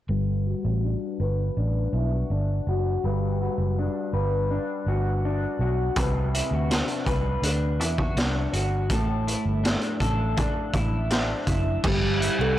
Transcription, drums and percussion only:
5.96 kick loud
5.96 closed hi-hat medium
6.34 closed hi-hat medium
6.71 snare medium
6.71 closed hi-hat medium
6.88 closed hi-hat soft
7.06 kick medium
7.06 closed hi-hat medium
7.43 closed hi-hat medium
7.81 closed hi-hat soft
7.98 kick medium
8.17 snare loud
8.17 closed hi-hat medium
8.53 closed hi-hat medium
8.90 kick loud
8.90 closed hi-hat medium
9.28 closed hi-hat medium
9.65 snare medium
9.65 closed hi-hat medium
9.81 closed hi-hat soft
10.00 kick medium
10.00 closed hi-hat medium
10.37 kick medium
10.37 closed hi-hat medium
10.73 kick medium
10.73 closed hi-hat medium
11.10 snare loud
11.10 closed hi-hat medium
11.47 kick medium
11.47 closed hi-hat medium
11.84 kick loud
11.84 crash medium
12.22 closed hi-hat medium

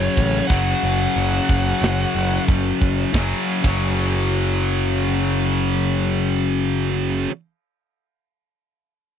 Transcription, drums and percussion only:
0.17 kick medium
0.49 kick loud
0.49 open hi-hat medium
1.17 open hi-hat medium
1.49 kick medium
1.83 snare loud
1.83 open hi-hat medium
2.48 kick medium
2.48 open hi-hat medium
2.82 kick medium
3.14 kick medium
3.14 snare medium
3.64 kick loud
3.64 crash medium

